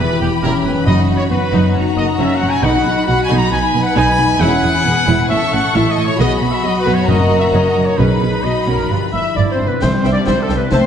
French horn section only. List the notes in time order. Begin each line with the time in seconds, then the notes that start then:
Already playing: E4
0.42 C#4
1.31 B3
1.76 D#4
2.20 C#4
2.63 D#4
3.08 F#4
3.52 D#4
4.40 C#4
4.84 B3
5.30 C#4
5.74 E4
6.19 G#4
6.64 F#4
7.08 A#4
7.99 G#4
8.44 F#4
8.90 G4
9.15 E4
9.36 D4
9.54 C4
9.67 B3
9.82 C4
10.13 D4
10.26 C4
10.42 A3
10.58 B3
10.71 C4